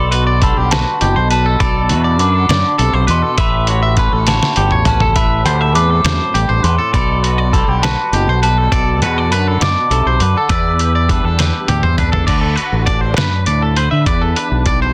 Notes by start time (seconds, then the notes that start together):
Already playing: B1 B2 A4 D5 B5
0.11 F#4 B4, closed hi-hat
0.27 D5
0.41 D3 G3 A4 B5, kick, closed hi-hat
0.57 B1 G4
0.71 F#4 B4 A5, snare, closed hi-hat
1.01 F#1 B2 G4, closed hi-hat
1.16 B1 C5
1.31 G3 B4 A5, closed hi-hat
1.46 A4
1.60 B1 B2 A4 D5 B5, kick, closed hi-hat
1.89 E2 F#4 B4, closed hi-hat
2.04 D5
2.19 F#2 D3 D4 B4 D6, closed hi-hat
2.34 A4
2.49 F#2 D3 D5, snare, closed hi-hat
2.78 B1 C3 A4, closed hi-hat
2.93 B1 C5
3.07 E2 B2 B4 C6, closed hi-hat
3.22 A4
3.38 A1 A2 B4 E5 B5, kick, closed hi-hat
3.67 F#4 C#5, closed hi-hat
3.83 E5
3.97 A3 C#4 B4 B5, kick, closed hi-hat
4.13 A1 A4
4.27 F#4 C#5 A5, snare, closed hi-hat
4.43 snare
4.56 G1 E2 G4, closed hi-hat
4.71 A1 C#5, mid tom
4.85 C#4 B4 A5, closed hi-hat, mid tom
5.00 A4, floor tom
5.16 A1 A2 B4 E5 B5, kick, closed hi-hat
5.45 D2 G4 C5, closed hi-hat
5.61 E5
5.75 E2 A3 C4 B4 D6, closed hi-hat
5.90 A4
6.04 E2 F#2 C5, snare, closed hi-hat
6.34 A1 G2 G4, closed hi-hat
6.49 A1 C5
6.63 E2 A2 B4 C6, closed hi-hat
6.78 A4
6.94 B1 B2 A4 D5 B5, kick, closed hi-hat
7.23 F#4 B4, closed hi-hat
7.38 D5
7.53 D3 G3 A4 B5, kick, closed hi-hat
7.67 B1 G4
7.83 F#4 B4 A5, snare, closed hi-hat
8.12 F#1 B2 G4, closed hi-hat
8.27 B1 C5
8.43 G3 B4 A5, closed hi-hat
8.58 A4
8.72 B1 B2 A4 D5, kick, closed hi-hat
9.02 E2 F#4 B4, closed hi-hat
9.18 D5
9.31 F#2 D3 D4 B4 B5, closed hi-hat
9.48 A4
9.60 F#2 B2 D5 D6, snare, closed hi-hat
9.90 B1 C3 A4, closed hi-hat
10.06 B1 C5
10.20 F#2 D3 B4, closed hi-hat
10.37 A4
10.49 E2 B4 D5 E6, kick, closed hi-hat
10.79 G4 B4, closed hi-hat
10.95 D5
11.09 G3 D4 B4, kick, closed hi-hat
11.24 E2 A4
11.39 G4 B4, snare, closed hi-hat
11.68 D2 E2 G4, closed hi-hat, high tom
11.83 E2 C5, mid tom
11.98 D4 B4, closed hi-hat, mid tom
12.12 A4, floor tom
12.27 D2 D3 D4 F#4 B4 D5, kick, closed hi-hat, crash
12.41 A4
12.56 F#4 B4, closed hi-hat
12.72 A1
12.86 D4 D5, kick, closed hi-hat
13.01 C5
13.17 F#2 B4, snare, closed hi-hat
13.46 D2 A2 D5, closed hi-hat
13.62 A4
13.76 B4 C5, closed hi-hat
13.91 D3 E5
14.06 E2 B4 D5, kick, closed hi-hat
14.21 A4
14.36 D4 B4, closed hi-hat
14.51 B1
14.66 G3 D5, kick, closed hi-hat
14.82 C5